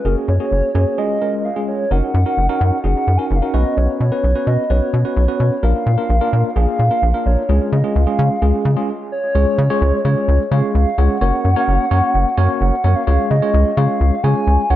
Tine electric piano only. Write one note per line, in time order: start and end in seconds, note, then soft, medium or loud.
0.05 0.33 A#3 medium
0.05 0.33 C#4 medium
0.05 0.33 F#4 medium
0.05 0.33 G#4 medium
0.40 0.68 A#3 medium
0.40 0.68 C#4 medium
0.40 0.68 F#4 medium
0.40 0.68 G#4 medium
0.75 0.98 A#3 medium
0.75 0.97 C#4 medium
0.75 0.98 F#4 medium
0.75 0.97 G#4 medium
0.98 1.17 G#3 medium
0.98 1.17 C#4 medium
0.98 1.17 F4 medium
0.98 1.17 G#4 medium
1.22 1.49 G#3 medium
1.22 1.49 C#4 medium
1.22 1.49 F4 medium
1.22 1.49 A#4 medium
1.56 1.84 G#3 medium
1.56 1.84 C#4 medium
1.56 1.84 F4 medium
1.56 1.84 G#4 medium
1.91 2.19 C#4 medium
1.91 2.19 D#4 medium
1.91 2.19 F#4 medium
1.91 2.19 A#4 medium
2.26 2.44 C#4 medium
2.26 2.44 D#4 medium
2.26 2.44 F#4 medium
2.26 2.44 A#4 medium
2.49 2.77 C#4 medium
2.49 2.77 D#4 medium
2.49 2.77 F#4 medium
2.49 2.77 A#4 loud
2.84 3.12 C#4 medium
2.84 3.12 D#4 medium
2.84 3.12 F#4 medium
2.84 3.12 G#4 medium
3.19 3.37 C#4 medium
3.19 3.37 D#4 medium
3.19 3.37 F#4 medium
3.19 3.37 A#4 medium
3.42 3.53 C#4 medium
3.42 3.54 D#4 medium
3.42 3.53 F#4 medium
3.42 3.54 A#4 medium
3.54 4.00 B3 medium
3.54 4.00 C#4 medium
3.54 4.00 F#4 medium
3.54 4.00 B4 medium
4.12 4.30 B3 medium
4.12 4.30 C#4 medium
4.12 4.30 F#4 medium
4.12 4.30 B4 medium
4.35 4.63 B3 medium
4.35 4.63 C#4 medium
4.35 4.63 F#4 medium
4.35 4.63 B4 medium
4.70 4.98 B3 medium
4.70 4.98 C#4 medium
4.70 4.98 F#4 medium
4.70 4.98 B4 medium
5.05 5.23 B3 medium
5.05 5.23 C#4 medium
5.05 5.23 F#4 medium
5.05 5.23 B4 medium
5.28 5.56 B3 medium
5.28 5.56 C#4 medium
5.28 5.56 F#4 medium
5.28 5.56 B4 medium
5.63 5.91 A#3 medium
5.63 5.91 D4 medium
5.63 5.91 F4 medium
5.63 5.91 A#4 medium
5.98 6.16 A#3 medium
5.98 6.16 D4 medium
5.98 6.16 F4 medium
5.98 6.16 A#4 medium
6.21 6.49 A#3 medium
6.21 6.49 D4 medium
6.21 6.49 F4 medium
6.21 6.49 A#4 loud
6.56 6.84 A#3 medium
6.56 6.84 D4 medium
6.56 6.84 F4 medium
6.56 6.84 G#4 medium
6.91 7.09 A#3 medium
6.91 7.09 D4 medium
6.91 7.09 F4 medium
6.91 7.09 A#4 medium
7.14 7.42 A#3 medium
7.14 7.42 D4 medium
7.14 7.42 F4 medium
7.14 7.42 A#4 medium
7.49 7.77 G#3 medium
7.49 7.77 C#4 medium
7.49 7.77 F4 medium
7.49 7.77 G#4 medium
7.84 8.02 G#3 medium
7.84 8.02 C#4 medium
7.84 8.02 F4 medium
7.84 8.02 G#4 medium
8.07 8.35 G#3 medium
8.07 8.35 C#4 medium
8.07 8.35 F4 medium
8.07 8.35 G#4 medium
8.42 8.70 G#3 medium
8.42 8.70 C#4 medium
8.42 8.70 F4 medium
8.42 8.70 G#4 medium
8.77 8.89 G#3 medium
8.77 8.89 C#4 medium
8.77 8.89 F4 medium
8.77 8.89 G#4 loud
9.35 9.63 G#3 medium
9.35 9.63 C#4 medium
9.35 9.63 F4 medium
9.35 9.63 G#4 medium
9.35 9.63 C#5 medium
9.70 9.98 G#3 medium
9.70 9.98 C#4 medium
9.70 9.98 F4 medium
9.70 9.98 G#4 medium
9.70 9.98 C#5 loud
10.05 10.42 G#3 medium
10.05 10.42 C#4 medium
10.05 10.42 F4 medium
10.05 10.42 G#4 medium
10.05 10.42 C#5 medium
10.52 10.88 G#3 medium
10.52 10.88 C#4 medium
10.52 10.88 F4 medium
10.52 10.88 G#4 medium
10.52 10.88 C#5 medium
10.98 11.16 G#3 medium
10.98 11.16 C#4 medium
10.98 11.16 F4 medium
10.98 11.16 G#4 medium
10.98 11.16 C#5 medium
11.21 11.49 A#3 medium
11.21 11.49 C#4 medium
11.21 11.49 F#4 medium
11.21 11.49 A#4 medium
11.21 11.49 C#5 medium
11.56 11.84 A#3 loud
11.56 11.84 C#4 medium
11.56 11.84 F#4 medium
11.56 11.84 A#4 medium
11.56 11.84 C#5 loud
11.91 12.28 A#3 medium
11.91 12.28 C#4 medium
11.91 12.28 F#4 medium
11.91 12.28 A#4 medium
11.91 12.28 C#5 loud
12.37 12.74 A#3 medium
12.37 12.74 C#4 medium
12.37 12.74 F#4 medium
12.37 12.74 A#4 medium
12.37 12.74 C#5 loud
12.84 13.02 A#3 medium
12.84 13.02 C#4 medium
12.84 13.02 F#4 medium
12.84 13.02 A#4 medium
12.84 13.02 C#5 medium
13.07 13.35 G#3 medium
13.07 13.35 C#4 medium
13.07 13.35 F4 medium
13.07 13.35 G#4 medium
13.07 13.35 C#5 medium
13.42 13.70 G#3 medium
13.42 13.70 C#4 medium
13.42 13.70 F4 medium
13.42 13.70 G#4 medium
13.42 13.70 C#5 medium
13.77 14.14 G#3 medium
13.77 14.14 C#4 medium
13.77 14.14 F4 medium
13.77 14.14 G#4 medium
13.77 14.14 C#5 medium
14.24 14.61 G#3 medium
14.24 14.61 C#4 medium
14.24 14.61 F4 medium
14.24 14.61 G#4 medium
14.24 14.61 C#5 medium
14.70 14.76 G#3 medium
14.70 14.76 C#4 medium
14.70 14.76 F4 medium
14.70 14.76 G#4 medium
14.70 14.76 C#5 medium